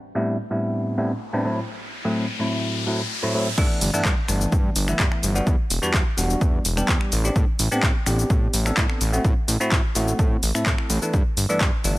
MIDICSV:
0, 0, Header, 1, 5, 480
1, 0, Start_track
1, 0, Key_signature, 1, "major"
1, 0, Tempo, 472441
1, 1716, Time_signature, 4, 2, 24, 8
1, 12175, End_track
2, 0, Start_track
2, 0, Title_t, "Tine electric piano"
2, 0, Program_c, 0, 4
2, 153, Note_on_c, 0, 45, 87
2, 155, Note_on_c, 0, 55, 80
2, 156, Note_on_c, 0, 59, 78
2, 158, Note_on_c, 0, 60, 76
2, 159, Note_on_c, 0, 62, 80
2, 161, Note_on_c, 0, 64, 94
2, 362, Note_off_c, 0, 45, 0
2, 363, Note_off_c, 0, 55, 0
2, 364, Note_off_c, 0, 59, 0
2, 364, Note_off_c, 0, 60, 0
2, 365, Note_off_c, 0, 62, 0
2, 366, Note_off_c, 0, 64, 0
2, 513, Note_on_c, 0, 45, 70
2, 515, Note_on_c, 0, 55, 65
2, 516, Note_on_c, 0, 59, 67
2, 518, Note_on_c, 0, 60, 67
2, 519, Note_on_c, 0, 62, 69
2, 523, Note_on_c, 0, 64, 83
2, 967, Note_off_c, 0, 45, 0
2, 968, Note_off_c, 0, 55, 0
2, 968, Note_off_c, 0, 59, 0
2, 970, Note_off_c, 0, 60, 0
2, 970, Note_off_c, 0, 62, 0
2, 972, Note_off_c, 0, 64, 0
2, 988, Note_on_c, 0, 45, 75
2, 991, Note_on_c, 0, 55, 69
2, 992, Note_on_c, 0, 59, 67
2, 994, Note_on_c, 0, 60, 68
2, 994, Note_on_c, 0, 62, 68
2, 997, Note_on_c, 0, 64, 85
2, 1126, Note_off_c, 0, 45, 0
2, 1127, Note_off_c, 0, 55, 0
2, 1127, Note_off_c, 0, 59, 0
2, 1128, Note_off_c, 0, 60, 0
2, 1128, Note_off_c, 0, 62, 0
2, 1130, Note_off_c, 0, 64, 0
2, 1354, Note_on_c, 0, 45, 92
2, 1355, Note_on_c, 0, 55, 81
2, 1355, Note_on_c, 0, 59, 80
2, 1358, Note_on_c, 0, 60, 81
2, 1359, Note_on_c, 0, 62, 80
2, 1360, Note_on_c, 0, 64, 96
2, 1455, Note_off_c, 0, 45, 0
2, 1456, Note_off_c, 0, 55, 0
2, 1456, Note_off_c, 0, 59, 0
2, 1457, Note_off_c, 0, 60, 0
2, 1458, Note_off_c, 0, 62, 0
2, 1458, Note_off_c, 0, 64, 0
2, 1469, Note_on_c, 0, 45, 72
2, 1472, Note_on_c, 0, 54, 68
2, 1472, Note_on_c, 0, 57, 67
2, 1475, Note_on_c, 0, 60, 65
2, 1479, Note_on_c, 0, 64, 80
2, 1606, Note_off_c, 0, 45, 0
2, 1607, Note_off_c, 0, 54, 0
2, 1607, Note_off_c, 0, 57, 0
2, 1609, Note_off_c, 0, 60, 0
2, 1611, Note_off_c, 0, 64, 0
2, 2077, Note_on_c, 0, 45, 81
2, 2079, Note_on_c, 0, 54, 74
2, 2081, Note_on_c, 0, 57, 75
2, 2082, Note_on_c, 0, 60, 75
2, 2085, Note_on_c, 0, 64, 93
2, 2284, Note_off_c, 0, 45, 0
2, 2285, Note_off_c, 0, 54, 0
2, 2286, Note_off_c, 0, 57, 0
2, 2287, Note_off_c, 0, 60, 0
2, 2288, Note_off_c, 0, 64, 0
2, 2432, Note_on_c, 0, 45, 76
2, 2435, Note_on_c, 0, 54, 68
2, 2436, Note_on_c, 0, 57, 65
2, 2439, Note_on_c, 0, 60, 66
2, 2441, Note_on_c, 0, 64, 85
2, 2886, Note_off_c, 0, 45, 0
2, 2888, Note_off_c, 0, 54, 0
2, 2888, Note_off_c, 0, 57, 0
2, 2890, Note_off_c, 0, 60, 0
2, 2891, Note_off_c, 0, 64, 0
2, 2912, Note_on_c, 0, 45, 76
2, 2916, Note_on_c, 0, 54, 69
2, 2919, Note_on_c, 0, 57, 68
2, 2919, Note_on_c, 0, 60, 69
2, 2922, Note_on_c, 0, 64, 81
2, 3047, Note_off_c, 0, 45, 0
2, 3050, Note_off_c, 0, 54, 0
2, 3051, Note_off_c, 0, 57, 0
2, 3051, Note_off_c, 0, 60, 0
2, 3053, Note_off_c, 0, 64, 0
2, 3276, Note_on_c, 0, 45, 87
2, 3278, Note_on_c, 0, 54, 83
2, 3279, Note_on_c, 0, 57, 82
2, 3282, Note_on_c, 0, 60, 83
2, 3286, Note_on_c, 0, 64, 94
2, 3377, Note_off_c, 0, 45, 0
2, 3377, Note_off_c, 0, 54, 0
2, 3378, Note_off_c, 0, 57, 0
2, 3379, Note_off_c, 0, 60, 0
2, 3381, Note_off_c, 0, 64, 0
2, 3393, Note_on_c, 0, 45, 75
2, 3393, Note_on_c, 0, 54, 69
2, 3397, Note_on_c, 0, 57, 67
2, 3400, Note_on_c, 0, 60, 67
2, 3401, Note_on_c, 0, 64, 82
2, 3528, Note_off_c, 0, 45, 0
2, 3528, Note_off_c, 0, 54, 0
2, 3530, Note_off_c, 0, 57, 0
2, 3531, Note_off_c, 0, 60, 0
2, 3532, Note_off_c, 0, 64, 0
2, 3634, Note_on_c, 0, 52, 104
2, 3638, Note_on_c, 0, 57, 92
2, 3639, Note_on_c, 0, 59, 93
2, 3643, Note_on_c, 0, 62, 113
2, 3950, Note_off_c, 0, 52, 0
2, 3952, Note_off_c, 0, 57, 0
2, 3952, Note_off_c, 0, 59, 0
2, 3954, Note_off_c, 0, 62, 0
2, 3998, Note_on_c, 0, 52, 89
2, 4000, Note_on_c, 0, 57, 79
2, 4002, Note_on_c, 0, 59, 80
2, 4003, Note_on_c, 0, 62, 99
2, 4205, Note_off_c, 0, 52, 0
2, 4206, Note_off_c, 0, 57, 0
2, 4207, Note_off_c, 0, 59, 0
2, 4207, Note_off_c, 0, 62, 0
2, 4352, Note_on_c, 0, 52, 78
2, 4355, Note_on_c, 0, 57, 73
2, 4359, Note_on_c, 0, 59, 70
2, 4359, Note_on_c, 0, 62, 89
2, 4806, Note_off_c, 0, 52, 0
2, 4808, Note_off_c, 0, 57, 0
2, 4810, Note_off_c, 0, 59, 0
2, 4810, Note_off_c, 0, 62, 0
2, 4955, Note_on_c, 0, 52, 78
2, 4959, Note_on_c, 0, 57, 70
2, 4962, Note_on_c, 0, 59, 70
2, 4965, Note_on_c, 0, 64, 84
2, 5408, Note_off_c, 0, 52, 0
2, 5410, Note_off_c, 0, 57, 0
2, 5411, Note_off_c, 0, 59, 0
2, 5413, Note_off_c, 0, 64, 0
2, 5436, Note_on_c, 0, 55, 79
2, 5437, Note_on_c, 0, 59, 75
2, 5440, Note_on_c, 0, 62, 71
2, 5443, Note_on_c, 0, 66, 85
2, 5644, Note_off_c, 0, 55, 0
2, 5644, Note_off_c, 0, 59, 0
2, 5646, Note_off_c, 0, 62, 0
2, 5647, Note_off_c, 0, 66, 0
2, 5912, Note_on_c, 0, 55, 91
2, 5914, Note_on_c, 0, 59, 84
2, 5916, Note_on_c, 0, 62, 83
2, 5921, Note_on_c, 0, 66, 102
2, 6121, Note_off_c, 0, 55, 0
2, 6123, Note_off_c, 0, 59, 0
2, 6124, Note_off_c, 0, 62, 0
2, 6126, Note_off_c, 0, 66, 0
2, 6272, Note_on_c, 0, 55, 79
2, 6274, Note_on_c, 0, 59, 72
2, 6277, Note_on_c, 0, 62, 75
2, 6280, Note_on_c, 0, 66, 88
2, 6726, Note_off_c, 0, 55, 0
2, 6728, Note_off_c, 0, 59, 0
2, 6729, Note_off_c, 0, 62, 0
2, 6730, Note_off_c, 0, 66, 0
2, 6876, Note_on_c, 0, 55, 78
2, 6880, Note_on_c, 0, 59, 71
2, 6883, Note_on_c, 0, 62, 74
2, 6885, Note_on_c, 0, 67, 83
2, 7220, Note_off_c, 0, 55, 0
2, 7222, Note_off_c, 0, 59, 0
2, 7223, Note_off_c, 0, 62, 0
2, 7224, Note_off_c, 0, 67, 0
2, 7357, Note_on_c, 0, 59, 77
2, 7360, Note_on_c, 0, 60, 73
2, 7362, Note_on_c, 0, 62, 75
2, 7366, Note_on_c, 0, 67, 91
2, 7564, Note_off_c, 0, 59, 0
2, 7566, Note_off_c, 0, 60, 0
2, 7566, Note_off_c, 0, 62, 0
2, 7569, Note_off_c, 0, 67, 0
2, 7835, Note_on_c, 0, 59, 97
2, 7840, Note_on_c, 0, 60, 84
2, 7841, Note_on_c, 0, 62, 90
2, 7844, Note_on_c, 0, 67, 101
2, 8043, Note_off_c, 0, 59, 0
2, 8046, Note_off_c, 0, 60, 0
2, 8046, Note_off_c, 0, 62, 0
2, 8048, Note_off_c, 0, 67, 0
2, 8189, Note_on_c, 0, 59, 80
2, 8192, Note_on_c, 0, 60, 73
2, 8195, Note_on_c, 0, 62, 78
2, 8198, Note_on_c, 0, 67, 88
2, 8645, Note_off_c, 0, 59, 0
2, 8646, Note_off_c, 0, 60, 0
2, 8648, Note_off_c, 0, 62, 0
2, 8649, Note_off_c, 0, 67, 0
2, 8792, Note_on_c, 0, 59, 79
2, 8796, Note_on_c, 0, 60, 73
2, 8797, Note_on_c, 0, 62, 71
2, 8801, Note_on_c, 0, 69, 85
2, 9138, Note_off_c, 0, 59, 0
2, 9140, Note_off_c, 0, 60, 0
2, 9141, Note_off_c, 0, 62, 0
2, 9142, Note_off_c, 0, 69, 0
2, 9276, Note_on_c, 0, 57, 79
2, 9276, Note_on_c, 0, 60, 75
2, 9280, Note_on_c, 0, 64, 71
2, 9281, Note_on_c, 0, 66, 87
2, 9483, Note_off_c, 0, 57, 0
2, 9484, Note_off_c, 0, 60, 0
2, 9485, Note_off_c, 0, 64, 0
2, 9486, Note_off_c, 0, 66, 0
2, 9755, Note_on_c, 0, 57, 92
2, 9759, Note_on_c, 0, 60, 86
2, 9760, Note_on_c, 0, 64, 84
2, 9764, Note_on_c, 0, 66, 101
2, 9963, Note_off_c, 0, 57, 0
2, 9965, Note_off_c, 0, 60, 0
2, 9966, Note_off_c, 0, 64, 0
2, 9968, Note_off_c, 0, 66, 0
2, 10110, Note_on_c, 0, 57, 80
2, 10113, Note_on_c, 0, 60, 70
2, 10115, Note_on_c, 0, 64, 71
2, 10117, Note_on_c, 0, 66, 85
2, 10565, Note_off_c, 0, 57, 0
2, 10567, Note_off_c, 0, 60, 0
2, 10568, Note_off_c, 0, 64, 0
2, 10569, Note_off_c, 0, 66, 0
2, 10712, Note_on_c, 0, 57, 77
2, 10715, Note_on_c, 0, 60, 70
2, 10716, Note_on_c, 0, 64, 70
2, 10721, Note_on_c, 0, 69, 82
2, 11167, Note_off_c, 0, 57, 0
2, 11168, Note_off_c, 0, 60, 0
2, 11169, Note_off_c, 0, 64, 0
2, 11171, Note_off_c, 0, 69, 0
2, 11194, Note_on_c, 0, 52, 76
2, 11197, Note_on_c, 0, 57, 70
2, 11198, Note_on_c, 0, 59, 71
2, 11203, Note_on_c, 0, 62, 82
2, 11403, Note_off_c, 0, 52, 0
2, 11404, Note_off_c, 0, 57, 0
2, 11404, Note_off_c, 0, 59, 0
2, 11407, Note_off_c, 0, 62, 0
2, 11673, Note_on_c, 0, 52, 97
2, 11676, Note_on_c, 0, 57, 82
2, 11681, Note_on_c, 0, 59, 84
2, 11681, Note_on_c, 0, 62, 102
2, 11882, Note_off_c, 0, 52, 0
2, 11884, Note_off_c, 0, 57, 0
2, 11886, Note_off_c, 0, 59, 0
2, 11886, Note_off_c, 0, 62, 0
2, 12031, Note_on_c, 0, 52, 77
2, 12032, Note_on_c, 0, 57, 74
2, 12036, Note_on_c, 0, 59, 73
2, 12038, Note_on_c, 0, 62, 86
2, 12175, Note_off_c, 0, 52, 0
2, 12175, Note_off_c, 0, 57, 0
2, 12175, Note_off_c, 0, 59, 0
2, 12175, Note_off_c, 0, 62, 0
2, 12175, End_track
3, 0, Start_track
3, 0, Title_t, "Analog synth bass"
3, 0, Program_c, 1, 38
3, 3635, Note_on_c, 1, 43, 102
3, 3729, Note_off_c, 1, 43, 0
3, 3874, Note_on_c, 1, 31, 81
3, 3968, Note_off_c, 1, 31, 0
3, 3998, Note_on_c, 1, 43, 43
3, 4092, Note_off_c, 1, 43, 0
3, 4115, Note_on_c, 1, 43, 84
3, 4209, Note_off_c, 1, 43, 0
3, 4354, Note_on_c, 1, 31, 83
3, 4537, Note_off_c, 1, 31, 0
3, 4595, Note_on_c, 1, 43, 88
3, 4778, Note_off_c, 1, 43, 0
3, 4833, Note_on_c, 1, 31, 80
3, 5017, Note_off_c, 1, 31, 0
3, 5075, Note_on_c, 1, 43, 102
3, 5169, Note_off_c, 1, 43, 0
3, 5316, Note_on_c, 1, 31, 93
3, 5498, Note_off_c, 1, 31, 0
3, 5554, Note_on_c, 1, 40, 104
3, 5649, Note_off_c, 1, 40, 0
3, 5795, Note_on_c, 1, 28, 80
3, 5889, Note_off_c, 1, 28, 0
3, 5921, Note_on_c, 1, 40, 45
3, 6013, Note_off_c, 1, 40, 0
3, 6035, Note_on_c, 1, 40, 86
3, 6129, Note_off_c, 1, 40, 0
3, 6274, Note_on_c, 1, 28, 86
3, 6457, Note_off_c, 1, 28, 0
3, 6514, Note_on_c, 1, 40, 84
3, 6697, Note_off_c, 1, 40, 0
3, 6756, Note_on_c, 1, 28, 79
3, 6938, Note_off_c, 1, 28, 0
3, 6996, Note_on_c, 1, 40, 101
3, 7089, Note_off_c, 1, 40, 0
3, 7237, Note_on_c, 1, 33, 103
3, 7419, Note_off_c, 1, 33, 0
3, 7474, Note_on_c, 1, 45, 107
3, 7568, Note_off_c, 1, 45, 0
3, 7716, Note_on_c, 1, 33, 85
3, 7809, Note_off_c, 1, 33, 0
3, 7842, Note_on_c, 1, 45, 46
3, 7934, Note_off_c, 1, 45, 0
3, 7954, Note_on_c, 1, 45, 90
3, 8048, Note_off_c, 1, 45, 0
3, 8194, Note_on_c, 1, 33, 83
3, 8377, Note_off_c, 1, 33, 0
3, 8432, Note_on_c, 1, 45, 87
3, 8616, Note_off_c, 1, 45, 0
3, 8672, Note_on_c, 1, 33, 83
3, 8856, Note_off_c, 1, 33, 0
3, 8913, Note_on_c, 1, 45, 104
3, 9008, Note_off_c, 1, 45, 0
3, 9152, Note_on_c, 1, 33, 100
3, 9336, Note_off_c, 1, 33, 0
3, 9393, Note_on_c, 1, 45, 105
3, 9488, Note_off_c, 1, 45, 0
3, 9632, Note_on_c, 1, 33, 87
3, 9727, Note_off_c, 1, 33, 0
3, 9760, Note_on_c, 1, 45, 46
3, 9852, Note_off_c, 1, 45, 0
3, 9873, Note_on_c, 1, 45, 91
3, 9968, Note_off_c, 1, 45, 0
3, 10115, Note_on_c, 1, 33, 81
3, 10297, Note_off_c, 1, 33, 0
3, 10354, Note_on_c, 1, 45, 84
3, 10537, Note_off_c, 1, 45, 0
3, 10595, Note_on_c, 1, 33, 89
3, 10689, Note_off_c, 1, 33, 0
3, 10719, Note_on_c, 1, 45, 45
3, 10812, Note_off_c, 1, 45, 0
3, 10832, Note_on_c, 1, 45, 91
3, 10927, Note_off_c, 1, 45, 0
3, 11071, Note_on_c, 1, 33, 94
3, 11167, Note_off_c, 1, 33, 0
3, 11314, Note_on_c, 1, 43, 108
3, 11408, Note_off_c, 1, 43, 0
3, 11551, Note_on_c, 1, 31, 86
3, 11647, Note_off_c, 1, 31, 0
3, 11679, Note_on_c, 1, 43, 45
3, 11772, Note_off_c, 1, 43, 0
3, 11793, Note_on_c, 1, 43, 85
3, 11888, Note_off_c, 1, 43, 0
3, 12033, Note_on_c, 1, 31, 83
3, 12175, Note_off_c, 1, 31, 0
3, 12175, End_track
4, 0, Start_track
4, 0, Title_t, "Riser"
4, 0, Program_c, 2, 103
4, 0, Note_on_c, 2, 60, 67
4, 3637, Note_off_c, 2, 60, 0
4, 12175, End_track
5, 0, Start_track
5, 0, Title_t, "Drums"
5, 3635, Note_on_c, 9, 36, 122
5, 3635, Note_on_c, 9, 49, 99
5, 3637, Note_on_c, 9, 69, 35
5, 3736, Note_off_c, 9, 49, 0
5, 3737, Note_off_c, 9, 36, 0
5, 3739, Note_off_c, 9, 69, 0
5, 3875, Note_on_c, 9, 46, 107
5, 3877, Note_on_c, 9, 69, 86
5, 3976, Note_off_c, 9, 46, 0
5, 3979, Note_off_c, 9, 69, 0
5, 4002, Note_on_c, 9, 69, 47
5, 4103, Note_off_c, 9, 69, 0
5, 4116, Note_on_c, 9, 36, 104
5, 4116, Note_on_c, 9, 39, 125
5, 4117, Note_on_c, 9, 69, 35
5, 4217, Note_off_c, 9, 36, 0
5, 4217, Note_off_c, 9, 39, 0
5, 4219, Note_off_c, 9, 69, 0
5, 4353, Note_on_c, 9, 26, 62
5, 4353, Note_on_c, 9, 46, 90
5, 4356, Note_on_c, 9, 69, 81
5, 4455, Note_off_c, 9, 26, 0
5, 4455, Note_off_c, 9, 46, 0
5, 4457, Note_off_c, 9, 69, 0
5, 4480, Note_on_c, 9, 69, 46
5, 4582, Note_off_c, 9, 69, 0
5, 4596, Note_on_c, 9, 36, 119
5, 4596, Note_on_c, 9, 69, 36
5, 4697, Note_off_c, 9, 36, 0
5, 4698, Note_off_c, 9, 69, 0
5, 4833, Note_on_c, 9, 46, 111
5, 4835, Note_on_c, 9, 69, 82
5, 4935, Note_off_c, 9, 46, 0
5, 4937, Note_off_c, 9, 69, 0
5, 4957, Note_on_c, 9, 26, 84
5, 4960, Note_on_c, 9, 69, 47
5, 5059, Note_off_c, 9, 26, 0
5, 5062, Note_off_c, 9, 69, 0
5, 5076, Note_on_c, 9, 36, 104
5, 5076, Note_on_c, 9, 39, 127
5, 5077, Note_on_c, 9, 69, 37
5, 5177, Note_off_c, 9, 36, 0
5, 5177, Note_off_c, 9, 39, 0
5, 5179, Note_off_c, 9, 69, 0
5, 5199, Note_on_c, 9, 26, 63
5, 5300, Note_off_c, 9, 26, 0
5, 5315, Note_on_c, 9, 46, 90
5, 5317, Note_on_c, 9, 69, 82
5, 5416, Note_off_c, 9, 46, 0
5, 5419, Note_off_c, 9, 69, 0
5, 5442, Note_on_c, 9, 69, 47
5, 5543, Note_off_c, 9, 69, 0
5, 5555, Note_on_c, 9, 36, 118
5, 5558, Note_on_c, 9, 69, 34
5, 5657, Note_off_c, 9, 36, 0
5, 5660, Note_off_c, 9, 69, 0
5, 5795, Note_on_c, 9, 46, 115
5, 5798, Note_on_c, 9, 69, 86
5, 5897, Note_off_c, 9, 46, 0
5, 5899, Note_off_c, 9, 69, 0
5, 5922, Note_on_c, 9, 69, 47
5, 6023, Note_off_c, 9, 69, 0
5, 6035, Note_on_c, 9, 36, 110
5, 6036, Note_on_c, 9, 39, 126
5, 6038, Note_on_c, 9, 69, 35
5, 6137, Note_off_c, 9, 36, 0
5, 6138, Note_off_c, 9, 39, 0
5, 6139, Note_off_c, 9, 69, 0
5, 6275, Note_on_c, 9, 46, 96
5, 6278, Note_on_c, 9, 69, 77
5, 6377, Note_off_c, 9, 46, 0
5, 6379, Note_off_c, 9, 69, 0
5, 6402, Note_on_c, 9, 69, 44
5, 6504, Note_off_c, 9, 69, 0
5, 6515, Note_on_c, 9, 36, 126
5, 6518, Note_on_c, 9, 69, 35
5, 6617, Note_off_c, 9, 36, 0
5, 6619, Note_off_c, 9, 69, 0
5, 6756, Note_on_c, 9, 46, 115
5, 6758, Note_on_c, 9, 69, 81
5, 6857, Note_off_c, 9, 46, 0
5, 6860, Note_off_c, 9, 69, 0
5, 6880, Note_on_c, 9, 26, 78
5, 6883, Note_on_c, 9, 69, 46
5, 6982, Note_off_c, 9, 26, 0
5, 6984, Note_off_c, 9, 69, 0
5, 6996, Note_on_c, 9, 36, 103
5, 6997, Note_on_c, 9, 39, 127
5, 6999, Note_on_c, 9, 69, 37
5, 7097, Note_off_c, 9, 36, 0
5, 7099, Note_off_c, 9, 39, 0
5, 7100, Note_off_c, 9, 69, 0
5, 7120, Note_on_c, 9, 26, 64
5, 7222, Note_off_c, 9, 26, 0
5, 7234, Note_on_c, 9, 46, 100
5, 7236, Note_on_c, 9, 69, 83
5, 7336, Note_off_c, 9, 46, 0
5, 7338, Note_off_c, 9, 69, 0
5, 7363, Note_on_c, 9, 69, 46
5, 7464, Note_off_c, 9, 69, 0
5, 7475, Note_on_c, 9, 36, 127
5, 7477, Note_on_c, 9, 69, 33
5, 7577, Note_off_c, 9, 36, 0
5, 7578, Note_off_c, 9, 69, 0
5, 7713, Note_on_c, 9, 46, 118
5, 7716, Note_on_c, 9, 69, 80
5, 7815, Note_off_c, 9, 46, 0
5, 7817, Note_off_c, 9, 69, 0
5, 7841, Note_on_c, 9, 69, 46
5, 7943, Note_off_c, 9, 69, 0
5, 7954, Note_on_c, 9, 36, 112
5, 7955, Note_on_c, 9, 39, 123
5, 7957, Note_on_c, 9, 69, 33
5, 8056, Note_off_c, 9, 36, 0
5, 8057, Note_off_c, 9, 39, 0
5, 8059, Note_off_c, 9, 69, 0
5, 8193, Note_on_c, 9, 26, 62
5, 8193, Note_on_c, 9, 46, 91
5, 8196, Note_on_c, 9, 69, 78
5, 8295, Note_off_c, 9, 26, 0
5, 8295, Note_off_c, 9, 46, 0
5, 8297, Note_off_c, 9, 69, 0
5, 8320, Note_on_c, 9, 69, 42
5, 8422, Note_off_c, 9, 69, 0
5, 8434, Note_on_c, 9, 36, 127
5, 8435, Note_on_c, 9, 69, 33
5, 8535, Note_off_c, 9, 36, 0
5, 8536, Note_off_c, 9, 69, 0
5, 8672, Note_on_c, 9, 46, 118
5, 8675, Note_on_c, 9, 69, 79
5, 8774, Note_off_c, 9, 46, 0
5, 8776, Note_off_c, 9, 69, 0
5, 8798, Note_on_c, 9, 26, 81
5, 8800, Note_on_c, 9, 69, 45
5, 8899, Note_off_c, 9, 26, 0
5, 8902, Note_off_c, 9, 69, 0
5, 8913, Note_on_c, 9, 36, 108
5, 8914, Note_on_c, 9, 39, 127
5, 8916, Note_on_c, 9, 69, 36
5, 9015, Note_off_c, 9, 36, 0
5, 9015, Note_off_c, 9, 39, 0
5, 9017, Note_off_c, 9, 69, 0
5, 9038, Note_on_c, 9, 26, 65
5, 9139, Note_off_c, 9, 26, 0
5, 9153, Note_on_c, 9, 46, 97
5, 9155, Note_on_c, 9, 69, 77
5, 9254, Note_off_c, 9, 46, 0
5, 9257, Note_off_c, 9, 69, 0
5, 9279, Note_on_c, 9, 69, 45
5, 9381, Note_off_c, 9, 69, 0
5, 9393, Note_on_c, 9, 36, 127
5, 9395, Note_on_c, 9, 69, 32
5, 9495, Note_off_c, 9, 36, 0
5, 9497, Note_off_c, 9, 69, 0
5, 9634, Note_on_c, 9, 46, 115
5, 9637, Note_on_c, 9, 69, 80
5, 9736, Note_off_c, 9, 46, 0
5, 9738, Note_off_c, 9, 69, 0
5, 9760, Note_on_c, 9, 69, 44
5, 9861, Note_off_c, 9, 69, 0
5, 9873, Note_on_c, 9, 36, 111
5, 9875, Note_on_c, 9, 39, 121
5, 9877, Note_on_c, 9, 69, 33
5, 9975, Note_off_c, 9, 36, 0
5, 9977, Note_off_c, 9, 39, 0
5, 9978, Note_off_c, 9, 69, 0
5, 10112, Note_on_c, 9, 46, 96
5, 10115, Note_on_c, 9, 69, 76
5, 10214, Note_off_c, 9, 46, 0
5, 10216, Note_off_c, 9, 69, 0
5, 10240, Note_on_c, 9, 69, 43
5, 10342, Note_off_c, 9, 69, 0
5, 10353, Note_on_c, 9, 36, 127
5, 10356, Note_on_c, 9, 69, 34
5, 10455, Note_off_c, 9, 36, 0
5, 10457, Note_off_c, 9, 69, 0
5, 10595, Note_on_c, 9, 46, 111
5, 10597, Note_on_c, 9, 69, 75
5, 10696, Note_off_c, 9, 46, 0
5, 10699, Note_off_c, 9, 69, 0
5, 10719, Note_on_c, 9, 26, 78
5, 10721, Note_on_c, 9, 69, 44
5, 10821, Note_off_c, 9, 26, 0
5, 10823, Note_off_c, 9, 69, 0
5, 10834, Note_on_c, 9, 36, 106
5, 10834, Note_on_c, 9, 39, 127
5, 10835, Note_on_c, 9, 69, 33
5, 10935, Note_off_c, 9, 36, 0
5, 10935, Note_off_c, 9, 39, 0
5, 10937, Note_off_c, 9, 69, 0
5, 10957, Note_on_c, 9, 26, 62
5, 11059, Note_off_c, 9, 26, 0
5, 11072, Note_on_c, 9, 46, 93
5, 11074, Note_on_c, 9, 69, 76
5, 11173, Note_off_c, 9, 46, 0
5, 11176, Note_off_c, 9, 69, 0
5, 11199, Note_on_c, 9, 69, 44
5, 11300, Note_off_c, 9, 69, 0
5, 11314, Note_on_c, 9, 36, 118
5, 11314, Note_on_c, 9, 69, 33
5, 11415, Note_off_c, 9, 69, 0
5, 11416, Note_off_c, 9, 36, 0
5, 11554, Note_on_c, 9, 46, 107
5, 11556, Note_on_c, 9, 69, 78
5, 11656, Note_off_c, 9, 46, 0
5, 11658, Note_off_c, 9, 69, 0
5, 11680, Note_on_c, 9, 69, 45
5, 11782, Note_off_c, 9, 69, 0
5, 11794, Note_on_c, 9, 39, 118
5, 11795, Note_on_c, 9, 36, 108
5, 11796, Note_on_c, 9, 69, 34
5, 11896, Note_off_c, 9, 36, 0
5, 11896, Note_off_c, 9, 39, 0
5, 11898, Note_off_c, 9, 69, 0
5, 12033, Note_on_c, 9, 46, 88
5, 12035, Note_on_c, 9, 69, 76
5, 12134, Note_off_c, 9, 46, 0
5, 12137, Note_off_c, 9, 69, 0
5, 12175, End_track
0, 0, End_of_file